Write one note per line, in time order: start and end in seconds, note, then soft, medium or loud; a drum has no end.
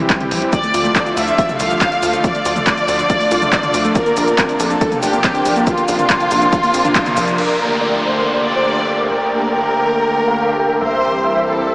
0.10 0.25 E3 medium
0.10 0.25 G3 medium
0.10 0.14 G3 medium
0.10 0.25 C4 medium
0.10 0.25 G4 medium
0.10 kick loud
0.10 clap loud
0.10 closed hi-hat medium
0.20 0.31 C4 medium
0.20 closed hi-hat soft
0.20 mid tom medium
0.31 0.46 A#1 medium
0.31 0.35 E3 medium
0.31 0.39 E3 medium
0.31 0.39 G3 medium
0.31 0.39 C4 medium
0.31 0.39 G4 medium
0.31 open hi-hat loud
0.42 0.49 E3 medium
0.42 0.49 G3 medium
0.42 0.49 C4 medium
0.42 0.52 E4 medium
0.42 0.49 G4 medium
0.42 closed hi-hat soft
0.53 0.60 F3 loud
0.53 1.08 D5 loud
0.53 kick loud
0.53 closed hi-hat medium
0.53 shaker soft
0.63 0.68 A3 medium
0.63 closed hi-hat soft
0.63 shaker soft
0.74 0.89 D2 loud
0.74 0.89 D3 medium
0.74 0.89 F3 medium
0.74 0.89 A3 medium
0.74 0.84 F4 loud
0.74 0.89 F4 medium
0.74 open hi-hat loud
0.74 shaker medium
0.85 0.89 A3 medium
0.85 closed hi-hat soft
0.85 shaker soft
0.95 1.10 D3 medium
0.95 1.10 F3 medium
0.95 1.10 A3 medium
0.95 1.03 D4 medium
0.95 1.10 F4 medium
0.95 kick loud
0.95 clap loud
0.95 closed hi-hat medium
0.95 shaker soft
1.06 1.16 F4 medium
1.06 closed hi-hat soft
1.06 shaker soft
1.17 1.31 D2 loud
1.17 1.32 D3 medium
1.17 1.32 F3 medium
1.17 1.32 A3 loud
1.17 1.32 F4 medium
1.17 1.21 F4 medium
1.17 1.58 E5 medium
1.17 open hi-hat loud
1.17 shaker medium
1.28 1.32 F4 medium
1.28 closed hi-hat soft
1.28 shaker soft
1.38 1.45 F4 loud
1.38 kick loud
1.38 closed hi-hat medium
1.38 shaker soft
1.49 1.64 D3 medium
1.49 1.64 F3 medium
1.49 1.64 A3 medium
1.49 1.53 A3 medium
1.49 1.64 F4 medium
1.49 closed hi-hat soft
1.49 mid tom medium
1.49 shaker soft
1.60 1.74 C2 loud
1.60 1.70 F4 loud
1.60 2.15 F5 loud
1.60 open hi-hat loud
1.60 shaker medium
1.70 1.78 D3 medium
1.70 1.78 F3 medium
1.70 1.78 A3 medium
1.70 1.75 A3 medium
1.70 1.78 F4 medium
1.70 closed hi-hat soft
1.70 shaker soft
1.81 1.96 D3 medium
1.81 1.96 F3 medium
1.81 1.96 A3 medium
1.81 1.91 D4 loud
1.81 1.96 F4 medium
1.81 kick loud
1.81 clap loud
1.81 closed hi-hat medium
1.81 shaker soft
1.92 1.99 F5 medium
1.92 closed hi-hat soft
1.92 shaker soft
2.03 2.17 D2 medium
2.03 2.10 D3 medium
2.03 2.10 F3 medium
2.03 2.10 A3 loud
2.03 2.10 F4 medium
2.03 2.07 F4 medium
2.03 open hi-hat loud
2.03 shaker medium
2.13 2.21 D3 medium
2.13 2.21 F3 medium
2.13 2.21 A3 medium
2.13 2.24 A3 loud
2.13 2.21 F4 medium
2.13 closed hi-hat soft
2.13 shaker soft
2.24 2.31 F3 loud
2.24 3.87 D5 loud
2.24 kick loud
2.24 closed hi-hat medium
2.24 shaker soft
2.35 2.39 A3 medium
2.35 closed hi-hat soft
2.35 shaker soft
2.45 2.60 D2 loud
2.45 2.60 D3 medium
2.45 2.60 F3 medium
2.45 2.61 A3 medium
2.45 2.56 F4 loud
2.45 2.60 F4 medium
2.45 open hi-hat loud
2.45 shaker medium
2.56 2.60 A3 medium
2.56 closed hi-hat soft
2.56 mid tom medium
2.56 shaker soft
2.67 2.82 D3 medium
2.67 2.82 F3 medium
2.67 2.82 A3 medium
2.67 2.74 D4 medium
2.67 2.82 F4 medium
2.67 kick loud
2.67 clap loud
2.67 closed hi-hat medium
2.67 shaker soft
2.78 2.87 F4 medium
2.78 closed hi-hat soft
2.78 shaker soft
2.88 3.03 D2 loud
2.88 3.03 D3 loud
2.88 3.03 F3 medium
2.88 3.03 A3 loud
2.88 2.93 F4 medium
2.88 3.03 F4 loud
2.88 open hi-hat loud
2.88 shaker medium
2.99 3.03 F4 medium
2.99 closed hi-hat soft
2.99 shaker soft
3.10 3.17 F4 loud
3.10 kick loud
3.10 closed hi-hat medium
3.10 shaker soft
3.20 3.35 D3 medium
3.20 3.35 F3 medium
3.20 3.25 A3 medium
3.20 3.35 A3 medium
3.20 3.35 F4 medium
3.20 open hi-hat medium
3.20 shaker soft
3.31 3.46 C2 loud
3.31 3.41 F4 loud
3.31 open hi-hat loud
3.31 shaker medium
3.42 3.49 D3 medium
3.42 3.49 F3 medium
3.42 3.49 A3 medium
3.42 3.46 A3 medium
3.42 3.49 F4 medium
3.42 closed hi-hat soft
3.42 mid tom medium
3.42 shaker soft
3.53 3.68 D3 medium
3.53 3.68 F3 medium
3.53 3.68 A3 medium
3.53 3.63 D4 loud
3.53 3.68 F4 medium
3.53 kick loud
3.53 clap loud
3.53 closed hi-hat medium
3.53 shaker soft
3.63 3.70 F5 medium
3.63 closed hi-hat soft
3.63 mid tom medium
3.63 shaker soft
3.74 3.89 D2 medium
3.74 3.82 D3 medium
3.74 3.82 F3 medium
3.74 3.81 A3 medium
3.74 3.78 F4 medium
3.74 3.82 F4 medium
3.74 open hi-hat loud
3.74 shaker medium
3.85 3.92 D3 medium
3.85 3.92 F3 medium
3.85 3.95 A3 loud
3.85 3.92 A3 medium
3.85 3.92 F4 medium
3.85 closed hi-hat soft
3.85 shaker soft
3.95 4.03 F3 loud
3.95 4.51 A#4 loud
3.95 kick loud
3.95 closed hi-hat medium
3.95 shaker soft
4.06 4.10 A#3 medium
4.06 closed hi-hat soft
4.06 shaker soft
4.17 4.31 A#1 medium
4.17 4.32 C3 medium
4.17 4.32 F3 medium
4.17 4.32 A#3 medium
4.17 4.27 D4 loud
4.17 4.32 D4 medium
4.17 open hi-hat loud
4.17 shaker medium
4.28 4.32 A#3 medium
4.28 closed hi-hat soft
4.28 shaker soft
4.38 4.53 C3 medium
4.38 4.53 F3 medium
4.38 4.53 A#3 medium
4.38 4.45 C4 medium
4.38 4.53 D4 medium
4.38 kick loud
4.38 clap loud
4.38 closed hi-hat medium
4.38 shaker soft
4.49 4.59 D4 medium
4.49 closed hi-hat soft
4.49 shaker soft
4.60 4.74 A#1 loud
4.60 4.75 C3 loud
4.60 4.75 F3 loud
4.60 4.75 A#3 medium
4.60 4.64 D4 medium
4.60 4.75 D4 medium
4.60 5.00 A4 medium
4.60 open hi-hat loud
4.60 shaker medium
4.70 4.75 D4 medium
4.70 closed hi-hat soft
4.70 shaker soft
4.81 4.88 D4 loud
4.81 kick loud
4.81 closed hi-hat medium
4.81 shaker soft
4.92 5.07 C3 medium
4.92 5.07 F3 medium
4.92 5.07 A#3 medium
4.92 4.96 A#3 medium
4.92 5.07 D4 medium
4.92 closed hi-hat soft
4.92 mid tom medium
4.92 shaker soft
5.03 5.17 F1 loud
5.03 5.13 D4 loud
5.03 5.58 G4 loud
5.03 open hi-hat loud
5.03 shaker medium
5.13 5.21 C3 medium
5.13 5.21 F3 medium
5.13 5.21 A#3 medium
5.13 5.18 A#3 medium
5.13 5.21 D4 medium
5.13 closed hi-hat soft
5.13 shaker soft
5.24 5.39 C3 medium
5.24 5.39 F3 medium
5.24 5.39 A#3 medium
5.24 5.34 C4 loud
5.24 5.39 D4 medium
5.24 kick loud
5.24 clap loud
5.24 closed hi-hat medium
5.24 shaker soft
5.35 5.42 C5 medium
5.35 closed hi-hat soft
5.35 shaker soft
5.45 5.60 A#1 medium
5.45 5.53 C3 medium
5.45 5.53 F3 medium
5.45 5.53 A#3 medium
5.45 5.50 D4 medium
5.45 5.53 D4 medium
5.45 open hi-hat loud
5.45 shaker medium
5.56 5.64 C3 medium
5.56 5.64 F3 medium
5.56 5.64 A#3 medium
5.56 5.66 A#3 loud
5.56 5.64 D4 medium
5.56 closed hi-hat soft
5.56 shaker soft
5.67 5.74 F3 loud
5.67 7.30 F4 loud
5.67 kick loud
5.67 closed hi-hat medium
5.67 shaker soft
5.78 5.82 A#3 medium
5.78 closed hi-hat soft
5.78 shaker soft
5.88 6.03 A#1 medium
5.88 6.03 C3 medium
5.88 6.03 F3 medium
5.88 6.03 A#3 medium
5.88 5.98 D4 loud
5.88 6.03 D4 medium
5.88 open hi-hat loud
5.88 shaker medium
5.99 6.03 A#3 medium
5.99 closed hi-hat soft
5.99 mid tom medium
5.99 shaker soft
6.10 6.25 C3 medium
6.10 6.25 F3 medium
6.10 6.25 A#3 medium
6.10 6.25 D4 medium
6.10 kick loud
6.10 clap loud
6.10 closed hi-hat loud
6.10 shaker soft
6.20 6.30 D4 medium
6.20 closed hi-hat soft
6.20 shaker soft
6.31 6.46 A#1 loud
6.31 6.46 C3 loud
6.31 6.46 F3 medium
6.31 6.46 A#3 medium
6.31 6.46 D4 loud
6.31 6.35 D4 medium
6.31 open hi-hat loud
6.31 shaker medium
6.42 6.46 D4 medium
6.42 closed hi-hat soft
6.42 shaker soft
6.53 6.60 D4 loud
6.53 kick loud
6.53 closed hi-hat medium
6.53 shaker soft
6.63 6.78 C3 medium
6.63 6.78 F3 medium
6.63 6.78 A#3 medium
6.63 6.68 A#3 medium
6.63 6.78 D4 medium
6.63 open hi-hat medium
6.63 shaker soft
6.74 6.89 A#1 medium
6.74 6.81 C4 medium
6.74 open hi-hat loud
6.74 shaker medium
6.85 6.92 C3 medium
6.85 6.92 F3 medium
6.85 6.92 A#3 medium
6.85 6.92 D4 medium
6.85 6.92 D4 loud
6.85 closed hi-hat soft
6.85 mid tom medium
6.85 shaker soft
6.95 7.11 C3 medium
6.95 7.11 F3 medium
6.95 7.11 A#3 medium
6.95 7.03 D4 medium
6.95 7.11 D4 medium
6.95 kick loud
6.95 clap loud
6.95 closed hi-hat loud
6.95 shaker soft
7.06 7.13 A#3 loud
7.06 closed hi-hat soft
7.06 mid tom medium
7.06 shaker soft
7.17 7.31 A#1 loud
7.17 7.24 C3 medium
7.17 7.24 F3 loud
7.17 7.24 A#3 medium
7.17 7.24 D4 medium
7.17 open hi-hat loud
7.17 shaker medium
7.28 7.35 C3 medium
7.28 7.35 F3 medium
7.28 7.38 F3 medium
7.28 7.35 A#3 medium
7.28 7.35 D4 medium
7.28 closed hi-hat soft
7.28 shaker soft
7.38 9.08 G1 medium
7.38 7.94 A#4 medium
7.38 7.67 D5 medium
7.38 crash medium
7.38 downlifter medium
7.60 7.75 D3 medium
7.60 7.75 A3 medium
7.60 7.75 A#3 medium
7.60 7.75 G4 medium
7.81 7.96 D3 medium
7.81 7.96 A3 medium
7.81 7.96 A#3 medium
7.81 7.96 G4 medium
7.81 8.10 D5 medium
8.03 8.18 D3 medium
8.03 8.18 A3 medium
8.03 8.18 A#3 medium
8.03 8.18 G4 medium
8.03 8.43 C5 medium
8.24 8.46 D5 medium
8.35 8.50 D3 medium
8.35 8.50 A3 medium
8.35 8.50 A#3 medium
8.35 8.50 G4 medium
8.45 9.01 D5 medium
8.56 8.64 D3 medium
8.56 8.63 A3 medium
8.56 8.64 A#3 medium
8.56 8.64 G4 medium
8.56 8.78 C5 medium
8.67 8.82 D3 medium
8.67 8.82 A3 medium
8.67 8.82 A#3 medium
8.67 8.82 G4 medium
8.88 8.96 D3 medium
8.88 8.96 A3 medium
8.88 8.96 A#3 medium
8.88 8.96 G4 medium
8.88 9.03 D5 medium
8.99 9.07 D3 medium
8.99 9.07 A3 medium
8.99 9.07 A#3 medium
8.99 9.07 G4 medium
9.10 10.79 G1 medium
9.10 10.73 A#4 loud
9.10 9.39 G5 loud
9.31 9.46 D3 medium
9.31 9.46 A3 medium
9.31 9.46 A#3 medium
9.31 9.46 G4 medium
9.53 9.68 D3 medium
9.53 9.68 A3 medium
9.53 9.68 A#3 medium
9.53 9.68 G4 medium
9.53 9.82 G5 medium
9.74 9.89 D3 medium
9.74 9.89 A3 medium
9.74 9.89 A#3 medium
9.74 9.89 G4 medium
9.95 10.17 G5 medium
10.06 10.21 D3 medium
10.06 10.21 A3 medium
10.06 10.21 A#3 medium
10.06 10.21 G4 medium
10.28 10.35 D3 medium
10.28 10.35 A3 medium
10.28 10.35 A#3 medium
10.28 10.35 G4 medium
10.28 10.49 F5 medium
10.38 10.53 D3 medium
10.38 10.53 A3 medium
10.38 10.53 A#3 medium
10.38 10.53 G4 medium
10.60 10.67 D3 medium
10.60 10.67 A3 medium
10.60 10.67 A#3 medium
10.60 10.67 G4 medium
10.60 10.74 G5 medium
10.70 10.78 D3 medium
10.70 10.78 A3 medium
10.70 10.78 A#3 medium
10.70 10.78 G4 medium
10.81 11.75 C2 medium
10.81 11.37 C5 loud
10.81 11.10 E5 loud
11.03 11.18 E3 medium
11.03 11.18 G3 medium
11.03 11.18 C4 medium
11.03 11.18 G4 medium
11.24 11.39 E3 medium
11.24 11.39 G3 medium
11.24 11.39 C4 medium
11.24 11.39 G4 medium
11.24 11.53 E5 medium
11.45 11.60 E3 medium
11.45 11.61 G3 medium
11.45 11.60 C4 medium
11.45 11.61 G4 medium
11.45 11.75 A4 medium
11.67 11.75 E5 medium